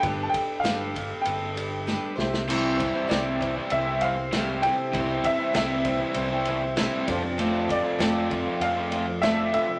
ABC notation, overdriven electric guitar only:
X:1
M:4/4
L:1/16
Q:1/4=98
K:C
V:1 name="Overdriven electric guitar"
z16 | [C,E,G,CE]3 [G,CE] [C,E,G,CE]2 [E,G,CE] [G,CE]2 [G,CE] [E,G,CE]2 [C,E,G,CE]2 [E,G,CE]2 | [C,E,G,CE]3 [G,CE] [C,E,G,CE]2 [E,G,CE] [G,CE]2 [G,CE] [E,G,CE]2 [C,E,G,CE]2 [F,,C,F,A,CF]2 | [F,,C,F,A,CF]3 [F,A,CF] [F,,C,F,A,CF]2 [F,A,CF] [F,A,CF]2 [F,A,CF] [F,A,CF]2 [F,,C,F,A,CF]2 [F,A,CF]2 |]